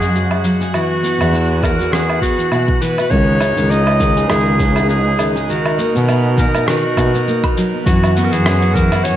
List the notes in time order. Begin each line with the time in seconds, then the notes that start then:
Already playing: F#2 C#3 G#3 F#4 G#4 F#6
0.01 F#3, cabasa
0.14 F#4, cabasa
0.31 low woodblock
0.44 F#3, cabasa
0.61 G#4, cabasa
0.73 E3 B3 F#4, cabasa, low woodblock
1.03 B3, cabasa
1.19 E2 E3, cabasa, low woodblock
1.33 E4, cabasa
1.62 E3 A#4, kick, cabasa, low woodblock
1.79 F#4, cabasa
1.92 E3 G#4, cross-stick, cabasa
2.10 low woodblock
2.22 B3 F#4, kick, cabasa
2.38 E3, cabasa
2.52 B2 E4, cabasa, low woodblock
2.68 kick
2.82 E3 B4, cabasa
2.98 F#4, cabasa, low woodblock
3.11 C#2 C#3 D#3 G#3 D#4 C#5, kick, cabasa
3.41 C#4, cabasa, low woodblock
3.57 C#2 D#3, cabasa
3.70 D#4 D#5, cabasa
3.87 low woodblock
4.00 D#3, kick, cabasa
4.17 G#4, cabasa
4.30 C#2 D#3 G#4, cross-stick, cabasa, low woodblock
4.59 C#4, kick, cabasa
4.76 D#3, cabasa, low woodblock
4.89 D#4 G#4, cabasa
5.19 D#3, cabasa, low woodblock
5.36 G#4, cabasa
5.49 B2 D#3 F#4 A#4, cabasa
5.66 low woodblock
5.78 A#3, cabasa
5.95 B2 D#3, cabasa
6.08 B3, cabasa, low woodblock
6.38 D#3 A#4, kick, cabasa
6.55 D#4, cabasa, low woodblock
6.67 D#3 F#4, cross-stick, cabasa
6.97 B2 D#4, kick, cabasa, low woodblock
7.14 B3, cabasa
7.28 A#3, cabasa
7.44 kick, low woodblock
7.57 F#3, cabasa
7.74 B3
7.86 F#2 E3 B3 F#4, kick, closed hi-hat, cabasa
8.04 cabasa, low woodblock
8.17 B3, cabasa
8.25 A#4
8.33 F#2 E3 G#4, closed hi-hat, cabasa
8.46 C#4, cross-stick, closed hi-hat, cabasa, low woodblock
8.63 closed hi-hat
8.74 E3 A#4, kick, cabasa
8.92 E4, closed hi-hat, cabasa, low woodblock
9.04 F#2 E3 C#5, closed hi-hat, cabasa